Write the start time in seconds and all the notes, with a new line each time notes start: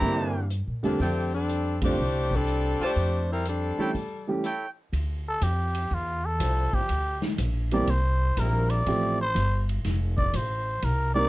Already playing: E3 A#3 D4 E4 G4 C5 D5 A#5
0.01 G2 D3 G3 A#3 C4 E4, kick, open hi-hat
0.50 closed hi-hat
0.67 A#2
0.83 E2 D3 F3 G3 A3 A#3 C4 D4 G4 A4, open hi-hat
0.99 F2 D3 A3 C4 F4 G4 A4 D5 G5, kick, open hi-hat
1.35 G3 C4 D4 A4
1.49 closed hi-hat
1.82 D3 G3 A3 C4 D4 F4 G4 C5, kick, ride
1.98 C2
2.31 kick
2.35 G3 C4 D4 A4
2.47 closed hi-hat
2.80 F4 A4 C5 D5 A5, muted upright bass stroke
2.85 A3 D4 G4
2.96 F2, kick, open hi-hat
3.32 G3 C4 E4 A#4
3.45 G3 C4 D4 A4, closed hi-hat
3.78 E3 G3 A3 C#4 E4 G4 A4 C#5 G5, muted upright bass stroke
3.95 kick, open hi-hat
4.28 E3 G3 A3 C#4 G4
4.44 E4 A4 C#5 G5, closed hi-hat
4.92 D2, kick, ride
5.28 A4
5.41 F2 G4, kick, hi-hat pedal, ride
5.75 ride
5.91 E2 F4, kick
6.26 A4
6.39 C2 F3 D4 E4 C5, kick, hi-hat pedal, ride
6.73 G4, muted upright bass stroke, kick
6.89 D2, kick, ride
7.22 snare
7.38 A#1, kick, hi-hat pedal, ride
7.71 E3 G3 A#3 C4 G4 D5, ride
7.87 C2 C5, kick, ride
8.36 A#1 G3 C4 E4 A#4, kick, hi-hat pedal, ride
8.70 D5, ride
8.86 A1 F3 A3 C4 E4 G4, kick, ride
9.21 C5
9.35 G1, kick, hi-hat pedal, ride
9.69 ride
9.85 F1, kick, snare, ride
10.18 D5, kick
10.34 A1 C5, kick, hi-hat pedal, ride
10.82 C2 A#4, kick, ride
11.15 G3 A#3 C4 D#4 A#4 D5